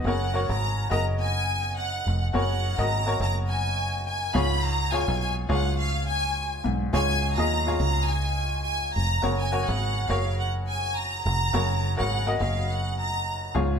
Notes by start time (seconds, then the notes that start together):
0.04 F#1 C#3 F#4 A#4 C#5 F#5
0.33 F#4 A#4 C#5
0.49 G#1 A#5
0.90 F#1 F#4 A#4 D#5 A#5
1.21 G#5
1.79 F#5
2.07 F1
2.33 F#1 C#3 F#4 A#4 C#5 F#5
2.78 G#1 F#4 A#4 D#5 A#5
3.06 F#4 A#4 C#5
3.20 F#1 A#5
3.50 G#5
4.08 G#5
4.34 C#2 G#2 F4 G#4 C#5 B5
4.64 A#5
4.92 F4 G#4 C#5 G#5
5.08 B1
5.22 G#5
5.49 C#2 F4 G#4 C#5 F#5
5.80 F5
6.08 G#5
6.64 B1 G#2
6.93 C#2 F4 G#4 C#5 G#5
7.37 D#2 F4 G#4 D#5 A#5
7.67 F4 G#4 C#5
7.80 C#2 A#5
8.09 G#5
8.66 G#5
8.95 F1 A#5
9.22 F#1 C#3 F#4 A#4 C#5
9.41 G#5
9.52 F#4 A#4 C#5
9.68 G#1 F#5
10.09 F#1 F#4 A#4 C#5 F5
10.40 F#5
10.68 G#5
10.96 A#5
11.24 F1 A#5
11.53 F#1 C#3 F#4 A#4 C#5
11.97 G#1 F#4 A#4 C#5 F#5
12.26 F#4 A#4 D#5
12.40 F#1 F5
12.70 F#5
12.99 A#5
13.55 C#2 G#2 F4 G#4 C#5